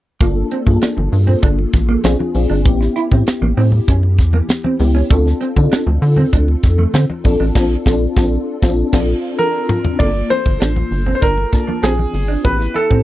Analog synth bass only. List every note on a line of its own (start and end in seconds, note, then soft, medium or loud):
0.21 0.43 G1 loud
0.67 0.78 G2 loud
0.97 1.09 G1 medium
1.12 1.35 G2 medium
1.43 1.66 G1 loud
1.74 1.96 A1 medium
2.04 2.16 A#1 medium
2.35 2.46 A#1 medium
2.50 2.67 G1 medium
2.65 2.88 A1 medium
3.12 3.23 A2 loud
3.42 3.53 A1 medium
3.57 3.80 A2 loud
3.88 4.20 F#2 medium
4.19 4.42 E2 medium
4.80 5.03 C#2 loud
5.11 5.33 D2 loud
5.56 5.68 D3 loud
5.87 5.98 D2 medium
6.02 6.25 D3 loud
6.33 6.56 D2 medium
6.63 6.86 F2 medium
6.94 7.05 D3 loud
7.25 7.36 A#1 loud
7.40 7.51 A1 medium
7.55 7.76 A#1 loud
7.86 8.07 A#1 medium
8.16 8.37 A#1 loud
8.62 8.83 A#1 loud
8.93 9.14 A#1 loud
10.00 10.23 G1 loud
10.46 10.57 G1 loud
10.61 10.84 A1 medium
10.91 11.14 G1 medium
11.22 11.45 G1 loud
11.83 12.06 A#1 medium
12.14 12.37 G1 medium
12.45 12.68 A1 loud
12.91 13.02 A2 medium